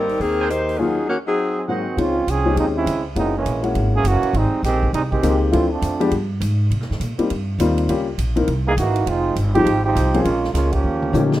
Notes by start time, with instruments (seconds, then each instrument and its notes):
Already playing: upright bass G#1, saxophone section G3 C4 D#4 A#4
0.09 open hi-hat
0.19 upright bass D#2, saxophone section D#3 A#3 C4 G#4, open hi-hat
0.38 trumpet section A#4 C5 G5 G#5
0.49 saxophone section A#3 D#4 G4 C5, closed hi-hat
0.69 open hi-hat
0.78 grand piano D#2 F#3 A#3 C#4 F4, saxophone section F#3 C#4 D#4 G#4
1.08 saxophone section D#3 A#3 C#4 F#4
1.26 saxophone section F#3 C4 D#4 G#4
1.56 trombone section F#3 C4 D#4 G#4
1.68 grand piano G#2 F#3 A#3 C4 F#4, trombone section D#3 G#3 C4 F#4, trumpet section G#4 C5 D#5 F#5
1.97 upright bass C#2, trombone section G#3 C4 C#4 F4, grand piano G#3 C4 C#4 D#4 F4, ride
2.27 upright bass C2, trombone section F3 C4 C#4 G#4, hi-hat pedal, ride
2.45 grand piano G#3 C4 C#4 D#4 G4
2.56 upright bass D#2, trombone section F3 G#3 C4 D#4, ride
2.76 trombone section G#3 C4 C#4 E4
2.86 upright bass C#2, hi-hat pedal, ride
3.16 upright bass F#1, trombone section E3 G#3 C4 D#4, grand piano G#3 A#3 C#4 E4 F#4, ride
3.36 trombone section E3 G#3 A#3 C#4
3.45 upright bass A#1, hi-hat pedal, ride
3.63 grand piano G#3 A#3 C#4 E4 F#4, ride
3.75 upright bass G#1, ride
3.95 trombone section E3 A#3 C#4 G#4
4.04 upright bass F#1, trombone section E3 A#3 C#4 F#4, hi-hat pedal, ride
4.22 muted upright bass stroke, ride
4.33 upright bass G#1, trombone section G3 G#3 C4 D#4, ride
4.63 upright bass A#1, trombone section D#3 G#3 C4 G4, snare, hi-hat pedal, ride
4.83 kick
4.93 upright bass C2, trombone section G3 G#3 C4 D#4, ride
5.11 trombone section D#3 G#3 C4 G4, kick
5.23 upright bass C#2, grand piano G#3 A#3 C4 D#4 G4, hi-hat pedal, ride
5.51 upright bass D2, trombone section E3 A3 C4 F4, grand piano F3 A3 C4 D4 E4, ride
5.70 trombone section F3 A3 C4 D4
5.82 upright bass F2, hi-hat pedal, ride
6.00 grand piano F3 G#3 B3 D4 G4, ride
6.11 upright bass G2, ride
6.41 upright bass G#2, hi-hat pedal, ride
6.70 upright bass C3, ride
6.80 upright bass A#2, snare
6.90 upright bass G2, snare
7.00 upright bass A#2, hi-hat pedal, ride
7.18 grand piano G3 A#3 C4 D#4 G4, muted upright bass stroke, ride
7.30 upright bass G2, ride
7.59 upright bass D#2, grand piano G3 A#3 C4 D#4 F4, hi-hat pedal, ride
7.78 ride
7.88 upright bass C#2, grand piano G3 A#3 C#4 F4 G4, ride
8.18 upright bass A#1, hi-hat pedal, ride
8.36 grand piano E3 A#3 C4 D#4 A#4, ride
8.48 upright bass C2, ride
8.67 trombone section E3 A#3 D#4 G#4
8.77 upright bass G#1, trombone section E3 A#3 D#4 F#4, hi-hat pedal, ride
8.96 ride
9.06 upright bass F1, trombone section G#3 C4 D#4 F4, ride
9.36 upright bass G1, hi-hat pedal, ride
9.54 trombone section F3 C4 D#4 G4, grand piano F3 G#3 C4 D#4 G4, ride
9.65 upright bass G#1, ride
9.84 trombone section F3 C4 D#4 G4
9.95 upright bass C2, hi-hat pedal, ride
10.14 grand piano F3 A#3 C4 C#4 G#4, ride
10.22 upright bass A#1, trombone section G#3 A#3 C#4 F4, ride
10.44 snare
10.52 upright bass C#2, trombone section G#3 A#3 C#4 D#4 F4, snare, hi-hat pedal, ride
10.72 trombone section F3 A#3 C#4 G4, kick, ride
10.84 upright bass D#2
11.02 mid tom
11.13 upright bass A#2, grand piano F3 A#3 C#4 D#4 G4, hi-hat pedal, mid tom
11.32 snare